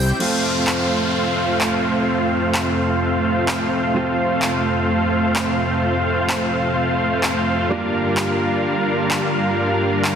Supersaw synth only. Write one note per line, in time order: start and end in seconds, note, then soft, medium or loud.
0.00 0.18 G3 medium
0.00 0.18 C4 medium
0.00 0.18 E4 medium
0.00 0.18 C5 medium
0.00 0.18 G5 loud
0.20 3.93 A3 medium
0.20 3.93 C4 medium
0.20 3.93 F4 medium
0.20 3.93 C5 medium
0.20 3.93 F5 medium
3.95 7.68 A3 medium
3.95 7.68 C4 medium
3.95 7.68 F4 medium
3.95 7.68 C5 medium
3.95 7.68 F5 medium
7.70 10.15 G3 medium
7.70 10.15 D4 medium
7.70 10.15 F4 medium
7.70 10.15 A#4 medium
7.70 10.15 F5 medium